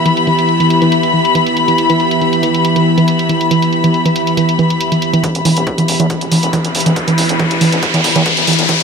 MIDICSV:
0, 0, Header, 1, 7, 480
1, 0, Start_track
1, 0, Key_signature, 1, "minor"
1, 0, Tempo, 431655
1, 62, Time_signature, 4, 2, 24, 8
1, 9820, End_track
2, 0, Start_track
2, 0, Title_t, "String section"
2, 0, Program_c, 0, 48
2, 0, Note_on_c, 0, 59, 74
2, 0, Note_on_c, 0, 67, 68
2, 0, Note_on_c, 0, 76, 71
2, 0, Note_on_c, 0, 83, 88
2, 9820, Note_off_c, 0, 59, 0
2, 9820, Note_off_c, 0, 67, 0
2, 9820, Note_off_c, 0, 76, 0
2, 9820, Note_off_c, 0, 83, 0
2, 9820, End_track
3, 0, Start_track
3, 0, Title_t, "Ambient pad"
3, 0, Program_c, 1, 92
3, 0, Note_on_c, 1, 52, 78
3, 5809, Note_off_c, 1, 52, 0
3, 5823, Note_on_c, 1, 52, 75
3, 9820, Note_off_c, 1, 52, 0
3, 9820, End_track
4, 0, Start_track
4, 0, Title_t, "Synth arpeggio sound"
4, 0, Program_c, 2, 84
4, 63, Note_on_c, 2, 52, 83
4, 109, Note_off_c, 2, 52, 0
4, 302, Note_on_c, 2, 52, 101
4, 349, Note_off_c, 2, 52, 0
4, 669, Note_on_c, 2, 52, 75
4, 711, Note_off_c, 2, 52, 0
4, 909, Note_on_c, 2, 52, 99
4, 951, Note_off_c, 2, 52, 0
4, 1263, Note_on_c, 2, 52, 74
4, 1309, Note_off_c, 2, 52, 0
4, 1502, Note_on_c, 2, 52, 102
4, 1549, Note_off_c, 2, 52, 0
4, 1869, Note_on_c, 2, 52, 77
4, 1911, Note_off_c, 2, 52, 0
4, 2109, Note_on_c, 2, 52, 102
4, 2151, Note_off_c, 2, 52, 0
4, 2462, Note_on_c, 2, 52, 80
4, 2509, Note_off_c, 2, 52, 0
4, 2702, Note_on_c, 2, 52, 97
4, 2749, Note_off_c, 2, 52, 0
4, 3069, Note_on_c, 2, 52, 75
4, 3111, Note_off_c, 2, 52, 0
4, 3309, Note_on_c, 2, 52, 104
4, 3351, Note_off_c, 2, 52, 0
4, 3663, Note_on_c, 2, 52, 76
4, 3709, Note_off_c, 2, 52, 0
4, 3903, Note_on_c, 2, 52, 97
4, 3949, Note_off_c, 2, 52, 0
4, 4270, Note_on_c, 2, 52, 79
4, 4311, Note_off_c, 2, 52, 0
4, 4509, Note_on_c, 2, 52, 100
4, 4551, Note_off_c, 2, 52, 0
4, 4863, Note_on_c, 2, 52, 85
4, 4909, Note_off_c, 2, 52, 0
4, 5103, Note_on_c, 2, 52, 97
4, 5149, Note_off_c, 2, 52, 0
4, 5470, Note_on_c, 2, 52, 76
4, 5511, Note_off_c, 2, 52, 0
4, 5710, Note_on_c, 2, 52, 106
4, 5751, Note_off_c, 2, 52, 0
4, 5823, Note_on_c, 2, 52, 78
4, 5869, Note_off_c, 2, 52, 0
4, 6063, Note_on_c, 2, 52, 100
4, 6109, Note_off_c, 2, 52, 0
4, 6429, Note_on_c, 2, 52, 77
4, 6471, Note_off_c, 2, 52, 0
4, 6669, Note_on_c, 2, 52, 100
4, 6711, Note_off_c, 2, 52, 0
4, 7023, Note_on_c, 2, 52, 75
4, 7069, Note_off_c, 2, 52, 0
4, 7263, Note_on_c, 2, 52, 100
4, 7309, Note_off_c, 2, 52, 0
4, 7630, Note_on_c, 2, 52, 83
4, 7671, Note_off_c, 2, 52, 0
4, 7870, Note_on_c, 2, 52, 105
4, 7911, Note_off_c, 2, 52, 0
4, 8223, Note_on_c, 2, 52, 80
4, 8269, Note_off_c, 2, 52, 0
4, 8463, Note_on_c, 2, 52, 99
4, 8509, Note_off_c, 2, 52, 0
4, 8829, Note_on_c, 2, 52, 75
4, 8871, Note_off_c, 2, 52, 0
4, 9069, Note_on_c, 2, 52, 104
4, 9111, Note_off_c, 2, 52, 0
4, 9423, Note_on_c, 2, 52, 76
4, 9469, Note_off_c, 2, 52, 0
4, 9662, Note_on_c, 2, 52, 102
4, 9709, Note_off_c, 2, 52, 0
4, 9820, End_track
5, 0, Start_track
5, 0, Title_t, "Analog synth bass"
5, 0, Program_c, 3, 38
5, 5950, Note_on_c, 3, 28, 91
5, 6025, Note_off_c, 3, 28, 0
5, 6063, Note_on_c, 3, 28, 97
5, 6142, Note_off_c, 3, 28, 0
5, 6189, Note_on_c, 3, 28, 96
5, 6265, Note_off_c, 3, 28, 0
5, 6430, Note_on_c, 3, 28, 83
5, 6505, Note_off_c, 3, 28, 0
5, 6543, Note_on_c, 3, 28, 97
5, 6623, Note_off_c, 3, 28, 0
5, 6670, Note_on_c, 3, 40, 85
5, 6745, Note_off_c, 3, 40, 0
5, 6910, Note_on_c, 3, 28, 87
5, 6985, Note_off_c, 3, 28, 0
5, 7022, Note_on_c, 3, 28, 101
5, 7102, Note_off_c, 3, 28, 0
5, 7149, Note_on_c, 3, 28, 92
5, 7225, Note_off_c, 3, 28, 0
5, 7389, Note_on_c, 3, 29, 86
5, 7465, Note_off_c, 3, 29, 0
5, 7503, Note_on_c, 3, 28, 97
5, 7582, Note_off_c, 3, 28, 0
5, 7629, Note_on_c, 3, 28, 93
5, 7705, Note_off_c, 3, 28, 0
5, 7869, Note_on_c, 3, 28, 89
5, 7945, Note_off_c, 3, 28, 0
5, 7983, Note_on_c, 3, 28, 100
5, 8063, Note_off_c, 3, 28, 0
5, 8109, Note_on_c, 3, 28, 96
5, 8185, Note_off_c, 3, 28, 0
5, 8350, Note_on_c, 3, 28, 87
5, 8425, Note_off_c, 3, 28, 0
5, 8463, Note_on_c, 3, 28, 102
5, 8543, Note_off_c, 3, 28, 0
5, 8591, Note_on_c, 3, 28, 91
5, 8665, Note_off_c, 3, 28, 0
5, 8830, Note_on_c, 3, 40, 90
5, 8905, Note_off_c, 3, 40, 0
5, 8943, Note_on_c, 3, 26, 104
5, 9023, Note_off_c, 3, 26, 0
5, 9070, Note_on_c, 3, 40, 96
5, 9145, Note_off_c, 3, 40, 0
5, 9310, Note_on_c, 3, 26, 88
5, 9385, Note_off_c, 3, 26, 0
5, 9424, Note_on_c, 3, 26, 105
5, 9503, Note_off_c, 3, 26, 0
5, 9550, Note_on_c, 3, 26, 93
5, 9625, Note_off_c, 3, 26, 0
5, 9820, End_track
6, 0, Start_track
6, 0, Title_t, "Riser"
6, 0, Program_c, 4, 103
6, 5823, Note_on_c, 4, 60, 80
6, 9820, Note_off_c, 4, 60, 0
6, 9820, End_track
7, 0, Start_track
7, 0, Title_t, "Drums"
7, 63, Note_on_c, 9, 42, 73
7, 174, Note_off_c, 9, 42, 0
7, 189, Note_on_c, 9, 42, 52
7, 300, Note_off_c, 9, 42, 0
7, 302, Note_on_c, 9, 42, 34
7, 414, Note_off_c, 9, 42, 0
7, 429, Note_on_c, 9, 42, 49
7, 540, Note_off_c, 9, 42, 0
7, 542, Note_on_c, 9, 42, 34
7, 653, Note_off_c, 9, 42, 0
7, 669, Note_on_c, 9, 42, 50
7, 780, Note_off_c, 9, 42, 0
7, 783, Note_on_c, 9, 42, 72
7, 894, Note_off_c, 9, 42, 0
7, 909, Note_on_c, 9, 42, 45
7, 1020, Note_off_c, 9, 42, 0
7, 1022, Note_on_c, 9, 42, 77
7, 1134, Note_off_c, 9, 42, 0
7, 1149, Note_on_c, 9, 42, 47
7, 1260, Note_off_c, 9, 42, 0
7, 1389, Note_on_c, 9, 42, 49
7, 1500, Note_off_c, 9, 42, 0
7, 1502, Note_on_c, 9, 42, 74
7, 1614, Note_off_c, 9, 42, 0
7, 1629, Note_on_c, 9, 42, 51
7, 1740, Note_off_c, 9, 42, 0
7, 1743, Note_on_c, 9, 42, 58
7, 1854, Note_off_c, 9, 42, 0
7, 1869, Note_on_c, 9, 42, 52
7, 1981, Note_off_c, 9, 42, 0
7, 1982, Note_on_c, 9, 42, 76
7, 2094, Note_off_c, 9, 42, 0
7, 2109, Note_on_c, 9, 42, 49
7, 2220, Note_off_c, 9, 42, 0
7, 2223, Note_on_c, 9, 42, 35
7, 2334, Note_off_c, 9, 42, 0
7, 2349, Note_on_c, 9, 42, 50
7, 2460, Note_off_c, 9, 42, 0
7, 2463, Note_on_c, 9, 42, 34
7, 2574, Note_off_c, 9, 42, 0
7, 2590, Note_on_c, 9, 42, 48
7, 2701, Note_off_c, 9, 42, 0
7, 2702, Note_on_c, 9, 42, 77
7, 2813, Note_off_c, 9, 42, 0
7, 2829, Note_on_c, 9, 42, 48
7, 2940, Note_off_c, 9, 42, 0
7, 2942, Note_on_c, 9, 42, 76
7, 3054, Note_off_c, 9, 42, 0
7, 3069, Note_on_c, 9, 42, 51
7, 3181, Note_off_c, 9, 42, 0
7, 3309, Note_on_c, 9, 42, 48
7, 3421, Note_off_c, 9, 42, 0
7, 3422, Note_on_c, 9, 42, 75
7, 3534, Note_off_c, 9, 42, 0
7, 3550, Note_on_c, 9, 42, 49
7, 3661, Note_off_c, 9, 42, 0
7, 3663, Note_on_c, 9, 42, 61
7, 3774, Note_off_c, 9, 42, 0
7, 3789, Note_on_c, 9, 42, 49
7, 3901, Note_off_c, 9, 42, 0
7, 3903, Note_on_c, 9, 42, 79
7, 4014, Note_off_c, 9, 42, 0
7, 4030, Note_on_c, 9, 42, 52
7, 4141, Note_off_c, 9, 42, 0
7, 4143, Note_on_c, 9, 42, 37
7, 4254, Note_off_c, 9, 42, 0
7, 4270, Note_on_c, 9, 42, 52
7, 4381, Note_off_c, 9, 42, 0
7, 4383, Note_on_c, 9, 42, 37
7, 4494, Note_off_c, 9, 42, 0
7, 4509, Note_on_c, 9, 42, 53
7, 4621, Note_off_c, 9, 42, 0
7, 4622, Note_on_c, 9, 42, 78
7, 4734, Note_off_c, 9, 42, 0
7, 4750, Note_on_c, 9, 42, 52
7, 4861, Note_off_c, 9, 42, 0
7, 4863, Note_on_c, 9, 42, 80
7, 4974, Note_off_c, 9, 42, 0
7, 4990, Note_on_c, 9, 42, 51
7, 5101, Note_off_c, 9, 42, 0
7, 5103, Note_on_c, 9, 42, 37
7, 5214, Note_off_c, 9, 42, 0
7, 5230, Note_on_c, 9, 42, 53
7, 5341, Note_off_c, 9, 42, 0
7, 5343, Note_on_c, 9, 42, 81
7, 5454, Note_off_c, 9, 42, 0
7, 5470, Note_on_c, 9, 42, 52
7, 5581, Note_off_c, 9, 42, 0
7, 5583, Note_on_c, 9, 42, 65
7, 5694, Note_off_c, 9, 42, 0
7, 5710, Note_on_c, 9, 42, 55
7, 5821, Note_off_c, 9, 42, 0
7, 5823, Note_on_c, 9, 36, 119
7, 5823, Note_on_c, 9, 42, 83
7, 5934, Note_off_c, 9, 36, 0
7, 5934, Note_off_c, 9, 42, 0
7, 5950, Note_on_c, 9, 42, 55
7, 6061, Note_off_c, 9, 42, 0
7, 6063, Note_on_c, 9, 46, 98
7, 6174, Note_off_c, 9, 46, 0
7, 6189, Note_on_c, 9, 42, 53
7, 6301, Note_off_c, 9, 42, 0
7, 6303, Note_on_c, 9, 36, 121
7, 6303, Note_on_c, 9, 42, 38
7, 6414, Note_off_c, 9, 36, 0
7, 6414, Note_off_c, 9, 42, 0
7, 6429, Note_on_c, 9, 42, 54
7, 6541, Note_off_c, 9, 42, 0
7, 6542, Note_on_c, 9, 46, 94
7, 6653, Note_off_c, 9, 46, 0
7, 6669, Note_on_c, 9, 42, 54
7, 6781, Note_off_c, 9, 42, 0
7, 6783, Note_on_c, 9, 36, 115
7, 6783, Note_on_c, 9, 42, 81
7, 6894, Note_off_c, 9, 36, 0
7, 6894, Note_off_c, 9, 42, 0
7, 6910, Note_on_c, 9, 42, 54
7, 7021, Note_off_c, 9, 42, 0
7, 7023, Note_on_c, 9, 46, 102
7, 7134, Note_off_c, 9, 46, 0
7, 7150, Note_on_c, 9, 42, 54
7, 7261, Note_off_c, 9, 42, 0
7, 7263, Note_on_c, 9, 36, 118
7, 7263, Note_on_c, 9, 42, 84
7, 7374, Note_off_c, 9, 36, 0
7, 7374, Note_off_c, 9, 42, 0
7, 7390, Note_on_c, 9, 42, 54
7, 7501, Note_off_c, 9, 42, 0
7, 7503, Note_on_c, 9, 46, 96
7, 7566, Note_on_c, 9, 42, 67
7, 7614, Note_off_c, 9, 46, 0
7, 7630, Note_off_c, 9, 42, 0
7, 7630, Note_on_c, 9, 42, 55
7, 7741, Note_off_c, 9, 42, 0
7, 7743, Note_on_c, 9, 36, 114
7, 7743, Note_on_c, 9, 42, 87
7, 7854, Note_off_c, 9, 36, 0
7, 7854, Note_off_c, 9, 42, 0
7, 7870, Note_on_c, 9, 42, 54
7, 7981, Note_off_c, 9, 42, 0
7, 7983, Note_on_c, 9, 46, 107
7, 8094, Note_off_c, 9, 46, 0
7, 8109, Note_on_c, 9, 42, 54
7, 8221, Note_off_c, 9, 42, 0
7, 8223, Note_on_c, 9, 36, 126
7, 8223, Note_on_c, 9, 42, 37
7, 8334, Note_off_c, 9, 36, 0
7, 8334, Note_off_c, 9, 42, 0
7, 8350, Note_on_c, 9, 42, 55
7, 8461, Note_off_c, 9, 42, 0
7, 8463, Note_on_c, 9, 46, 96
7, 8574, Note_off_c, 9, 46, 0
7, 8589, Note_on_c, 9, 42, 52
7, 8701, Note_off_c, 9, 42, 0
7, 8703, Note_on_c, 9, 36, 120
7, 8703, Note_on_c, 9, 42, 82
7, 8814, Note_off_c, 9, 36, 0
7, 8814, Note_off_c, 9, 42, 0
7, 8829, Note_on_c, 9, 42, 56
7, 8941, Note_off_c, 9, 42, 0
7, 8943, Note_on_c, 9, 36, 64
7, 8943, Note_on_c, 9, 46, 111
7, 9054, Note_off_c, 9, 36, 0
7, 9054, Note_off_c, 9, 46, 0
7, 9069, Note_on_c, 9, 42, 54
7, 9180, Note_off_c, 9, 42, 0
7, 9182, Note_on_c, 9, 42, 83
7, 9183, Note_on_c, 9, 36, 127
7, 9293, Note_off_c, 9, 42, 0
7, 9294, Note_off_c, 9, 36, 0
7, 9309, Note_on_c, 9, 42, 54
7, 9420, Note_off_c, 9, 42, 0
7, 9422, Note_on_c, 9, 46, 100
7, 9485, Note_on_c, 9, 42, 70
7, 9533, Note_off_c, 9, 46, 0
7, 9549, Note_off_c, 9, 42, 0
7, 9549, Note_on_c, 9, 42, 57
7, 9660, Note_off_c, 9, 42, 0
7, 9662, Note_on_c, 9, 36, 108
7, 9662, Note_on_c, 9, 42, 83
7, 9773, Note_off_c, 9, 42, 0
7, 9774, Note_off_c, 9, 36, 0
7, 9820, End_track
0, 0, End_of_file